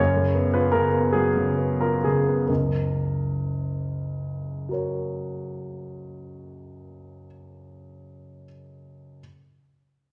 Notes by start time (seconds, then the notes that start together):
Already playing: C#5
0.00 F#2
0.17 C#3
0.35 B3
0.54 F4 B4
0.72 C#3 A#4
0.93 B3
1.12 F#3 G#4
1.37 C#3
1.58 B3
1.81 F4 A#4
2.04 C#3 G#4
2.28 B3
2.47 F#1 C#2 A#4
4.69 F#4 A#4
4.73 C#5